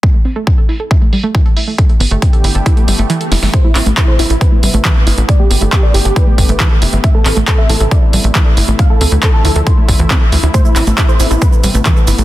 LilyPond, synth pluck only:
\new Staff \with { instrumentName = "Synth pluck" } { \time 4/4 \key a \minor \tempo 4 = 137 a16 a16 c'16 a16 r16 a'16 e'16 a'16 e'16 a16 g16 a16 e16 a'16 e'16 a16 | a16 a16 b16 a16 r16 a'16 e'16 a'16 e'16 a16 g16 a16 e16 a'16 e'16 a16 | a16 a16 c'16 a16 r16 a'16 e'16 a'16 e'16 a16 g16 a16 e16 a'16 e'16 a16 | a16 a16 b16 a16 r16 a'16 e'16 a'16 e'16 a16 g16 a16 e16 a'16 e'16 a16 |
a16 a16 c'16 a16 r16 a'16 e'16 a'16 e'16 a16 g16 a16 e16 a'16 e'16 a16 | a16 a16 c'16 a16 r16 a'16 e'16 a'16 e'16 a16 a'16 e16 c'16 a16 a16 e'16 | a16 a16 c'16 a16 r16 a'16 e'16 a'16 e'16 a16 g16 a16 e16 a'16 e'16 a16 | }